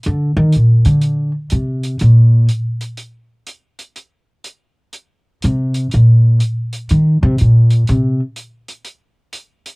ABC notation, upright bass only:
X:1
M:4/4
L:1/8
Q:"Swing" 1/4=123
K:Cm
V:1 name="Upright bass" clef=bass
D, E, B,, D,2 z C,2 | B,,2 z6 | z6 C,2 | B,,2 z2 E, C, B,,2 |
C, z6 z |]